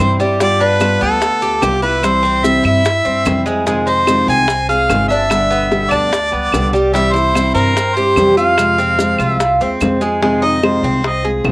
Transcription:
Already playing: cuban tres C4, harmonica C5
0.00 upright bass G2, nylon-string guitar C3 E3 G3 C4 E4
0.19 cuban tres G3, nylon-string guitar G3 C4 E4, high bongo, maracas
0.39 nylon-string guitar G3 B3 F4, cuban tres G3, harmonica D5, high bongo, maracas
0.60 cuban tres D4, harmonica B4, high bongo, maracas
0.80 nylon-string guitar G3 B3 F4, high bongo, claves, maracas
1.01 upright bass D2, cuban tres B3, harmonica A4, high bongo, maracas
1.21 muted nylon-string guitar stroke, high bongo, maracas
1.41 nylon-string guitar B3 F4, cuban tres G4, maracas
1.61 upright bass C2, nylon-string guitar G3 B3 F4, harmonica G4, high bongo, low bongo, claves, maracas
1.82 nylon-string guitar B3 F4, cuban tres E4, harmonica B4, high bongo, maracas
2.02 nylon-string guitar C3 E3 G3 C4 E4, harmonica C5, high bongo, claves, maracas
2.23 cuban tres C4, high bongo, maracas
2.43 nylon-string guitar C3 E3 G3 C4 E4, harmonica E5, high bongo, maracas
2.63 upright bass G2, cuban tres E4, harmonica E5, high bongo, claves, maracas
2.85 high bongo, maracas
3.05 upright bass G2, nylon-string guitar G3 C4 E4, cuban tres C4, maracas
3.25 upright bass F2, nylon-string guitar C3 E3 G3 C4 E4, high bongo, low bongo, claves, maracas
3.45 nylon-string guitar G3 C4 E4, cuban tres G#3, high bongo, maracas
3.66 nylon-string guitar C3 D#3 G#3 C4 F4, cuban tres G#3, high bongo, maracas
3.87 cuban tres D#4, harmonica C5, high bongo, maracas
4.07 nylon-string guitar C3 D#3 G#3 C4 F4, high bongo, claves, maracas
4.27 upright bass C2, cuban tres C4, harmonica G#5, high bongo, maracas
4.48 muted nylon-string guitar stroke, high bongo, maracas
4.69 nylon-string guitar G#3 C4 F4, cuban tres G#4, harmonica F5, maracas
4.89 upright bass G1, nylon-string guitar C3 D#3 G#3 C4 F4, high bongo, low bongo, claves, maracas
5.08 nylon-string guitar G#3 C4 F4, cuban tres D4, harmonica E5, high bongo, maracas
5.29 nylon-string guitar B2 D3 G3 B3 G4, high bongo, claves, maracas
5.51 cuban tres B3, high bongo, maracas
5.70 nylon-string guitar B2 D3 G3 B3 G4, high bongo, maracas
5.91 upright bass D2, cuban tres D4, harmonica D5, high bongo, claves, maracas
6.12 muted nylon-string guitar stroke, high bongo, maracas
6.31 upright bass C#2, nylon-string guitar G3 B3 G4, cuban tres B3, maracas
6.52 upright bass C2, nylon-string guitar B2 D3 G3 B3 G4, high bongo, low bongo, claves, maracas
6.73 cuban tres G3, nylon-string guitar G3 B3 G4, high bongo, maracas
6.92 nylon-string guitar C3 E3 G3 C4 E4, cuban tres G3, harmonica E5, high bongo, maracas
7.12 cuban tres E4, harmonica C5, high bongo, maracas
7.34 nylon-string guitar C3 E3 G3 C4 E4, high bongo, claves, maracas
7.54 upright bass G2, cuban tres C4, harmonica A#4, high bongo, maracas
7.76 muted nylon-string guitar stroke, high bongo, maracas
7.96 nylon-string guitar G3 C4 E4, cuban tres G4, harmonica C5, maracas
8.16 upright bass F2, nylon-string guitar C3 E3 G3 C4 E4, high bongo, low bongo, claves, maracas
8.37 nylon-string guitar G3 C4 E4, cuban tres F4, harmonica F5, high bongo, maracas
8.58 nylon-string guitar C3 F3 G#3 C4 F4, high bongo, claves, maracas
8.79 cuban tres C4, high bongo, maracas
8.98 nylon-string guitar C3 F3 G#3 C4 F4, high bongo, maracas
9.19 upright bass C2, cuban tres F4, high bongo, claves, maracas
9.29 harmonica E5
9.40 muted nylon-string guitar stroke, high bongo, maracas
9.60 upright bass D#2, nylon-string guitar G#3 C4 F4, cuban tres C4, maracas
9.80 upright bass F2, nylon-string guitar C3 F3 G#3 C4 F4, high bongo, low bongo, claves, maracas
10.01 cuban tres G#3, nylon-string guitar G#3 C4 F4, high bongo, maracas
10.21 nylon-string guitar C3 D#3 G#3 C4 F4, cuban tres G#3, high bongo
10.42 cuban tres D#4, harmonica D#5, high bongo
10.62 nylon-string guitar C3 D#3 G#3 C4 F4, harmonica C5, high bongo, claves
10.83 upright bass C2, cuban tres C4, high bongo
11.03 muted nylon-string guitar stroke, high bongo
11.07 harmonica D#5
11.23 nylon-string guitar G#3 C4 F4, cuban tres G#4
11.44 upright bass C2, nylon-string guitar C3 D#3 G#3 C4 F4, high bongo, low bongo, claves

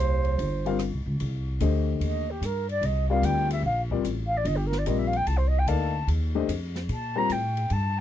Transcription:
Already playing: upright bass C2, bass clarinet D#2, flute C5
0.24 ride
0.38 upright bass G1, ride
0.66 grand piano G3 C4 F4 A#4 F5, ride
0.79 cross-stick, hi-hat pedal, ride
0.93 upright bass C2
1.06 upright bass C#2
1.20 upright bass C2, ride
1.60 upright bass D2, grand piano D3 A3 G4 C5 D#5, hi-hat pedal, ride
2.00 upright bass D#2, flute D#5, ride
2.30 flute G4
2.41 upright bass G2, flute A#4, hi-hat pedal, ride
2.69 flute D5, ride
2.81 upright bass C2, flute D#5, ride
3.09 grand piano G3 C4 F4 A#4 D5, flute F5
3.22 upright bass D2, flute G5, hi-hat pedal, ride
3.50 flute E5, ride
3.63 upright bass A#1, flute F5
3.91 grand piano G3 C4 F4 A#4 D5, kick
4.04 upright bass A1, hi-hat pedal, ride
4.26 flute F5
4.37 flute D5
4.45 upright bass G1, flute D#5, ride
4.56 flute G4
4.66 flute A#4
4.72 snare
4.78 flute D5
4.85 upright bass A#1, grand piano G3 C4 F4 A#4 D5, flute D#5, hi-hat pedal, ride
4.98 flute E5
5.07 flute F5
5.13 flute G5, ride
5.26 upright bass C2, flute A5, ride
5.37 flute C5
5.47 flute D#5
5.58 flute G5
5.66 upright bass D2, grand piano A#3 D#4 A4 D5 F5, flute A5, hi-hat pedal, ride
6.07 upright bass D#2, ride
6.35 grand piano A3 D4 G4 C5 D#5
6.48 upright bass F2, hi-hat pedal, ride
6.76 snare, ride
6.89 upright bass A#2, flute A5, ride
7.15 grand piano G3 C4 F4 A#4 C5, flute A#5
7.30 upright bass A2, flute G5, hi-hat pedal, ride
7.57 ride
7.70 upright bass G2, flute A5, ride

